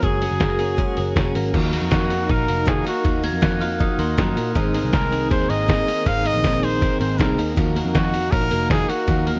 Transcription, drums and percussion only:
0.03 kick, closed hi-hat
0.22 open hi-hat
0.40 kick, snare, closed hi-hat
0.59 open hi-hat
0.78 kick, closed hi-hat
0.97 open hi-hat
1.16 kick, snare, closed hi-hat
1.35 open hi-hat
1.54 kick, crash, ride
1.73 open hi-hat
1.91 kick, snare, ride
2.10 open hi-hat
2.29 kick, ride
2.48 open hi-hat
2.67 kick, snare, ride
2.87 open hi-hat
3.05 kick, ride
3.24 open hi-hat
3.42 kick, snare, ride
3.61 open hi-hat
3.80 kick, ride
3.99 open hi-hat
4.18 kick, snare, ride
4.37 open hi-hat
4.55 kick, ride
4.74 open hi-hat
4.93 kick, snare, ride
5.12 open hi-hat
5.31 kick, ride
5.50 open hi-hat
5.69 kick, snare, ride
5.88 open hi-hat
6.06 kick, ride
6.26 open hi-hat
6.44 kick, snare, ride
6.63 open hi-hat
6.82 kick, ride
7.01 open hi-hat
7.20 kick, snare, ride
7.39 open hi-hat
7.57 kick, ride
7.76 open hi-hat
7.95 kick, snare, ride
8.14 open hi-hat
8.32 kick, ride
8.51 open hi-hat
8.70 kick, snare, ride
8.89 open hi-hat
9.08 kick, ride
9.27 open hi-hat

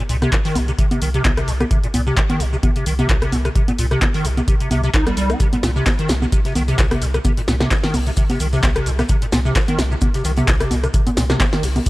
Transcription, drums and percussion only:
0.09 open hi-hat, shaker
0.22 cross-stick, closed hi-hat, high conga, shaker
0.32 kick, clap, closed hi-hat, shaker
0.45 open hi-hat, shaker
0.55 open hi-hat, high conga, shaker
0.68 closed hi-hat, shaker
0.79 kick, closed hi-hat, shaker
0.91 closed hi-hat, high conga, shaker
1.02 open hi-hat, shaker
1.14 closed hi-hat, shaker
1.25 kick, clap, closed hi-hat, high conga, shaker
1.37 cross-stick, closed hi-hat, shaker
1.48 open hi-hat, shaker
1.60 cross-stick, closed hi-hat, high conga, shaker
1.71 kick, closed hi-hat, shaker
1.84 closed hi-hat, shaker
1.94 open hi-hat, high conga, shaker
2.07 shaker
2.17 kick, clap, closed hi-hat, shaker
2.30 closed hi-hat, high conga, shaker
2.40 open hi-hat, shaker
2.53 shaker
2.63 kick, closed hi-hat, high conga, shaker
2.76 closed hi-hat, shaker
2.86 open hi-hat, shaker
2.99 closed hi-hat, high conga, shaker
3.09 kick, clap, closed hi-hat, shaker
3.22 cross-stick, closed hi-hat, shaker
3.32 open hi-hat, high conga, shaker
3.45 cross-stick, closed hi-hat, shaker
3.55 kick, closed hi-hat, shaker
3.68 closed hi-hat, high conga, shaker
3.79 open hi-hat, shaker
3.91 cross-stick, closed hi-hat, shaker
4.02 kick, clap, closed hi-hat, high conga, shaker
4.14 open hi-hat, shaker
4.25 open hi-hat, shaker
4.37 closed hi-hat, high conga, shaker
4.48 kick, closed hi-hat, shaker
4.60 closed hi-hat, shaker
4.71 open hi-hat, high conga, shaker
4.84 closed hi-hat, shaker
4.94 kick, clap, closed hi-hat, shaker
5.07 cross-stick, closed hi-hat, high conga, shaker
5.17 open hi-hat, shaker
5.30 cross-stick, closed hi-hat, shaker
5.40 kick, closed hi-hat, shaker
5.53 closed hi-hat, high conga, shaker
5.63 snare, open hi-hat, shaker
5.76 shaker
5.86 kick, snare, clap, closed hi-hat, high conga, shaker
5.99 closed hi-hat, shaker
6.09 snare, open hi-hat, shaker
6.22 high conga, shaker
6.32 kick, closed hi-hat, shaker
6.45 snare, closed hi-hat, shaker
6.55 snare, open hi-hat, high conga, shaker
6.68 closed hi-hat, shaker
6.78 kick, snare, clap, closed hi-hat, shaker
6.91 cross-stick, closed hi-hat, high conga, shaker
7.02 open hi-hat, shaker
7.14 cross-stick, closed hi-hat, shaker
7.25 kick, closed hi-hat, high conga, shaker
7.37 closed hi-hat, shaker
7.48 snare, open hi-hat, shaker
7.60 cross-stick, snare, closed hi-hat, high conga, shaker
7.71 kick, snare, clap, closed hi-hat, shaker
7.84 snare, open hi-hat, shaker
7.94 open hi-hat, high conga, shaker
8.07 closed hi-hat, shaker
8.17 kick, closed hi-hat, shaker
8.30 snare, closed hi-hat, high conga, shaker
8.39 open hi-hat, shaker
8.53 snare, closed hi-hat, shaker
8.63 kick, snare, clap, closed hi-hat, high conga, shaker
8.76 cross-stick, closed hi-hat, shaker
8.86 open hi-hat, shaker
8.99 cross-stick, snare, closed hi-hat, high conga, shaker
9.09 kick, closed hi-hat, shaker
9.22 closed hi-hat, shaker
9.32 snare, open hi-hat, high conga, shaker
9.45 shaker
9.55 kick, snare, clap, closed hi-hat, shaker
9.68 closed hi-hat, high conga, shaker
9.79 snare, open hi-hat, shaker
9.92 shaker
10.01 kick, closed hi-hat, high conga, shaker
10.14 snare, closed hi-hat, shaker
10.24 snare, open hi-hat, shaker
10.37 closed hi-hat, high conga, shaker
10.48 kick, snare, clap, closed hi-hat, shaker
10.60 cross-stick, closed hi-hat, shaker
10.71 open hi-hat, high conga, shaker
10.84 cross-stick, closed hi-hat, shaker
10.94 kick, closed hi-hat, shaker
11.07 closed hi-hat, high conga, shaker
11.17 snare, open hi-hat, shaker
11.30 cross-stick, snare, closed hi-hat, shaker
11.40 kick, snare, clap, closed hi-hat, high conga, shaker
11.53 snare, open hi-hat, shaker
11.63 open hi-hat, shaker
11.76 closed hi-hat, high conga, shaker
11.86 kick, closed hi-hat, shaker

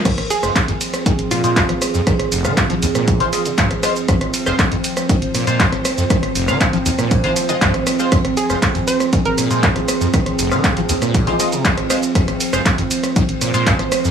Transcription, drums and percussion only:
0.05 kick, cross-stick, closed hi-hat, crash, ride, shaker
0.18 cross-stick, closed hi-hat
0.30 snare, open hi-hat, ride, shaker
0.43 cross-stick, shaker
0.56 kick, cross-stick, snare, clap, closed hi-hat, ride, shaker
0.68 snare, closed hi-hat
0.81 open hi-hat, ride, shaker
0.94 cross-stick, snare, closed hi-hat, shaker
1.06 kick, closed hi-hat, ride, shaker
1.19 closed hi-hat
1.31 cross-stick, open hi-hat, ride, shaker
1.44 closed hi-hat, ride, shaker
1.56 kick, snare, clap, closed hi-hat, ride, shaker
1.69 cross-stick, closed hi-hat
1.82 cross-stick, open hi-hat, ride, shaker
1.94 snare, shaker
2.07 kick, cross-stick, closed hi-hat, ride, shaker
2.20 cross-stick, closed hi-hat
2.32 open hi-hat, ride, shaker
2.45 cross-stick, shaker
2.57 kick, cross-stick, snare, clap, closed hi-hat, ride, shaker
2.70 closed hi-hat, ride
2.82 open hi-hat, ride, shaker
2.95 cross-stick, closed hi-hat, shaker
3.08 kick, closed hi-hat, ride, shaker
3.20 snare, closed hi-hat
3.33 cross-stick, open hi-hat, ride, shaker
3.45 closed hi-hat, shaker
3.57 kick, snare, clap, closed hi-hat, ride, shaker
3.71 cross-stick, closed hi-hat
3.83 cross-stick, open hi-hat, ride, shaker
3.96 shaker
4.08 kick, cross-stick, closed hi-hat, ride, shaker
4.21 cross-stick, closed hi-hat
4.34 snare, open hi-hat, ride, shaker
4.46 cross-stick, shaker
4.59 kick, cross-stick, snare, clap, closed hi-hat, ride, shaker
4.72 snare, closed hi-hat
4.84 open hi-hat, ride, shaker
4.97 cross-stick, snare, closed hi-hat, shaker
5.09 kick, closed hi-hat, ride, shaker
5.22 closed hi-hat
5.35 cross-stick, open hi-hat, ride, shaker
5.47 closed hi-hat, ride, shaker
5.60 kick, snare, clap, closed hi-hat, ride, shaker
5.73 cross-stick, closed hi-hat
5.85 cross-stick, open hi-hat, ride, shaker
5.98 snare, shaker
6.10 kick, cross-stick, closed hi-hat, ride, shaker
6.23 cross-stick, closed hi-hat
6.35 open hi-hat, ride, shaker
6.48 cross-stick, shaker
6.61 kick, cross-stick, snare, clap, closed hi-hat, ride, shaker
6.73 closed hi-hat, ride
6.86 open hi-hat, ride, shaker
6.99 cross-stick, closed hi-hat, shaker
7.11 kick, closed hi-hat, ride, shaker
7.24 snare, closed hi-hat
7.36 cross-stick, open hi-hat, ride, shaker
7.49 closed hi-hat, shaker
7.61 kick, snare, clap, closed hi-hat, ride, shaker
7.74 cross-stick, closed hi-hat
7.87 cross-stick, open hi-hat, ride, shaker
7.99 shaker
8.12 kick, cross-stick, closed hi-hat, ride, shaker
8.25 cross-stick, closed hi-hat
8.37 snare, open hi-hat, ride, shaker
8.50 cross-stick, shaker
8.62 kick, cross-stick, snare, clap, closed hi-hat, ride, shaker
8.75 snare, closed hi-hat
8.87 open hi-hat, ride, shaker
9.00 cross-stick, snare, closed hi-hat, shaker
9.13 kick, closed hi-hat, ride, shaker
9.25 closed hi-hat
9.38 cross-stick, open hi-hat, ride, shaker
9.51 closed hi-hat, ride, shaker
9.63 kick, snare, clap, closed hi-hat, ride, shaker
9.76 cross-stick, closed hi-hat
9.88 cross-stick, open hi-hat, ride, shaker
10.01 snare, shaker
10.13 kick, cross-stick, closed hi-hat, ride, shaker
10.26 cross-stick, closed hi-hat
10.39 open hi-hat, ride, shaker
10.52 cross-stick, shaker
10.64 kick, cross-stick, snare, clap, closed hi-hat, ride, shaker
10.77 closed hi-hat, ride
10.89 open hi-hat, ride, shaker
11.02 cross-stick, closed hi-hat, shaker
11.14 kick, closed hi-hat, ride, shaker
11.27 snare, closed hi-hat
11.40 cross-stick, open hi-hat, ride, shaker
11.52 closed hi-hat, shaker
11.65 kick, snare, clap, closed hi-hat, ride, shaker
11.78 cross-stick, closed hi-hat
11.90 cross-stick, open hi-hat, ride, shaker
12.03 shaker
12.15 kick, cross-stick, closed hi-hat, ride, shaker
12.28 cross-stick, closed hi-hat
12.40 snare, open hi-hat, ride, shaker
12.53 cross-stick, shaker
12.66 kick, cross-stick, snare, clap, closed hi-hat, ride, shaker
12.78 snare, closed hi-hat
12.91 open hi-hat, ride, shaker
13.03 cross-stick, snare, closed hi-hat, shaker
13.16 kick, closed hi-hat, ride, shaker
13.29 closed hi-hat
13.41 cross-stick, open hi-hat, ride, shaker
13.54 closed hi-hat, ride, shaker
13.67 kick, snare, clap, closed hi-hat, ride, shaker
13.79 cross-stick, closed hi-hat
13.91 cross-stick, open hi-hat, ride, shaker
14.04 snare, shaker

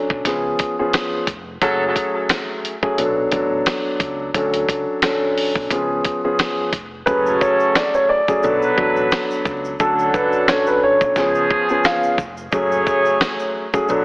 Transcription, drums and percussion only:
0.10 kick
0.25 kick, snare, closed hi-hat
0.59 kick, closed hi-hat
0.93 snare, closed hi-hat
1.27 kick, closed hi-hat
1.62 kick, closed hi-hat
1.96 kick, closed hi-hat
2.29 snare, closed hi-hat
2.65 closed hi-hat
2.83 kick
2.98 closed hi-hat
3.32 kick, closed hi-hat
3.66 snare, closed hi-hat
4.00 kick, closed hi-hat
4.34 kick, closed hi-hat
4.54 closed hi-hat
4.69 kick, closed hi-hat
5.02 snare, closed hi-hat
5.38 open hi-hat
5.56 kick
5.70 kick, closed hi-hat
6.04 kick, closed hi-hat
6.39 snare, closed hi-hat
6.73 kick, closed hi-hat
7.07 kick, shaker
7.26 shaker
7.41 kick, shaker
7.60 shaker
7.75 snare, shaker
7.94 shaker
8.28 kick, shaker
8.43 shaker
8.62 shaker
8.78 kick
8.96 shaker
9.12 snare, shaker
9.31 shaker
9.45 kick, shaker
9.65 shaker
9.80 kick, shaker
9.99 shaker
10.14 kick, shaker
10.33 shaker
10.48 snare, shaker
10.67 shaker
11.01 kick, shaker
11.16 kick, snare, shaker
11.35 shaker
11.50 kick
11.69 shaker
11.84 snare, shaker
12.03 shaker
12.18 kick, shaker
12.37 shaker
12.52 kick, shaker
12.72 shaker
12.87 kick, shaker
13.05 shaker
13.21 snare, shaker
13.39 shaker
13.74 kick, shaker
13.89 shaker

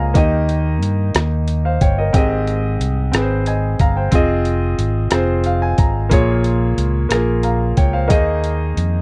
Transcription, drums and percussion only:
0.15 kick, closed hi-hat
0.49 closed hi-hat
0.82 closed hi-hat
1.15 cross-stick, closed hi-hat
1.48 closed hi-hat
1.81 kick, closed hi-hat
2.14 kick, closed hi-hat
2.47 closed hi-hat
2.81 closed hi-hat
3.13 cross-stick, closed hi-hat
3.46 closed hi-hat
3.79 kick, closed hi-hat
4.12 kick, closed hi-hat
4.45 closed hi-hat
4.79 closed hi-hat
5.11 cross-stick, closed hi-hat
5.44 closed hi-hat
5.78 kick, closed hi-hat
6.11 kick, closed hi-hat
6.44 closed hi-hat
6.78 closed hi-hat
7.11 cross-stick, closed hi-hat
7.43 closed hi-hat
7.77 kick, closed hi-hat
8.10 kick, closed hi-hat
8.44 closed hi-hat
8.77 closed hi-hat

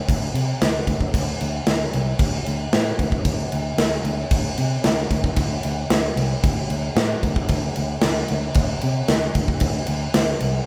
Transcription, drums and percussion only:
0.09 kick, crash
0.35 crash
0.62 snare, crash
0.87 kick, crash
1.01 kick
1.14 kick, crash
1.41 crash
1.67 snare, crash
1.93 crash
2.19 kick, crash
2.46 crash
2.73 snare, crash
2.99 kick, crash
3.12 kick
3.25 kick, crash
3.52 crash
3.78 snare, crash
4.05 crash
4.31 kick, crash
4.58 crash
4.84 snare, crash
5.11 kick, crash
5.24 kick
5.36 kick, crash
5.63 crash
5.90 snare, crash
6.17 crash
6.44 kick, crash
6.70 crash
6.96 snare, crash
7.23 kick, crash
7.36 kick
7.48 kick, crash
7.76 crash
8.01 snare, crash
8.28 crash
8.54 kick, crash
8.81 crash
9.08 snare, crash
9.35 kick, crash
9.48 kick
9.60 kick, crash
9.87 crash
10.14 snare, crash
10.40 crash

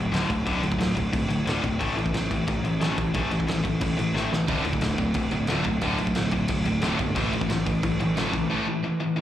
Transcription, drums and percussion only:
0.14 snare, crash
0.30 kick, crash
0.47 kick, crash
0.63 crash
0.72 kick
0.81 snare, crash
0.97 kick, crash
1.13 kick, crash
1.30 crash
1.47 snare, crash
1.64 kick, crash
1.81 kick, crash
1.98 crash
2.06 kick
2.14 snare, crash
2.31 kick, crash
2.48 kick, crash
2.65 crash
2.81 snare, crash
2.98 kick, crash
3.14 kick, crash
3.31 crash
3.40 kick
3.48 snare, crash
3.65 kick, crash
3.81 kick, crash
3.99 crash
4.16 snare
4.33 snare
4.48 kick, crash
4.65 crash
4.73 kick
4.81 snare, crash
4.98 kick, crash
5.14 kick, crash
5.31 crash
5.47 snare, crash
5.64 kick, crash
5.81 kick, crash
5.98 crash
6.07 kick
6.15 snare, crash
6.31 kick, crash
6.48 kick, crash
6.65 crash
6.82 snare, crash
6.99 kick, crash
7.16 kick, crash
7.33 crash
7.41 kick
7.50 snare, crash
7.67 kick, crash
7.83 kick, crash
8.00 crash
8.17 snare, crash
8.34 kick, crash

